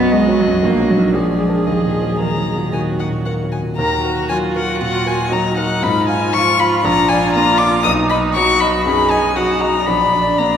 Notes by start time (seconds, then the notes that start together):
Already playing: B1 F#2 F#3 B3 F#4 D#5
0.12 G#3 D#5
0.29 F#3
0.39 F#3
0.47 F#2
0.63 A#1 A#3
0.80 F#3
0.90 F#3
0.97 D#4 A#4
1.13 A#1 F3 G#4 D5
1.32 G#3
1.48 D4 A#4
1.66 D#2 F3 D#5
1.84 A#2
2.01 F#3
2.19 D#3 A#4 A#5
2.37 F#3
2.56 A#2
2.72 D#2 F#4 G#5
2.91 F#3
3.00 F#5
3.08 A#2
3.26 A#4 F#5
3.44 F#3
3.52 G#5
3.62 A#2
3.77 D#2 F#4 A#4 A#5
4.05 F#4 A#4
4.29 F#3 F4 G#5
4.56 A#4 F#5
4.81 A#2 F#5
5.06 A#4 G#5
5.32 F#3 D#4 A#5
5.58 A#4 F#5
5.83 G#2 F4 B5
6.08 F5 G#5
6.33 F3 F4 C#6
6.59 F5 B5
6.83 A#1 D4 F4 A#5
7.09 D5 G#5
7.34 A#3 A#5
7.58 D5 D6
7.84 B1 D#4 D#6
8.10 D#5 B5
8.34 F#3 F#4 C#6
8.60 D#5 B5
8.85 F#2 D#4 G#4 B5
9.10 D#5 G#5
9.36 F#3 D#4 F#4 F#5
9.61 D#5 A#5
9.86 A#1 D4 B5
10.13 D5
10.38 A#3 D4 A#5